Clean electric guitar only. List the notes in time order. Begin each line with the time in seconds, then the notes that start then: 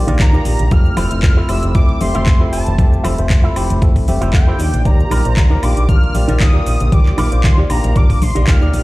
0.07 D#4 G4 A#4 D5
0.33 D#4 G4 A#4 D5
0.97 E4 F4 A4 C5
1.22 muted clean electric guitar stroke
1.37 E4 F4 A4 C5
2.14 E4 F4 A4 C5
2.40 E4 F4 A4 C5
3.04 E4 F4 A4 C5
3.29 muted clean electric guitar stroke
3.43 E4 F4 A4 C5
4.21 E4 F4 A4 C5
4.47 E4 F4 A4 C5
4.59 D#4 G4 A#4 D5
5.10 D#4 G4 A#4 D5
5.36 muted clean electric guitar stroke
5.50 D#4 G4 A#4 D5
6.28 D#4 G4 A#4 D5
6.54 D#4 G4 A#4 D5
7.18 D#4 G4 A#4 D5
7.44 muted clean electric guitar stroke
7.58 D#4 G4 A#4 D5
8.35 D#4 G4 A#4 D5
8.61 D#4 G4 A#4 D5